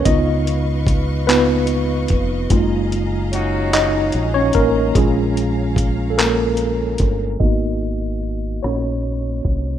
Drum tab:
HH |xxxxxx|xxxxxx|xxxxxx|xxxxxx|
CP |---x--|---x--|---x--|------|
SD |------|------|------|---r--|
BD |o-o--o|o----o|o-o--o|o----o|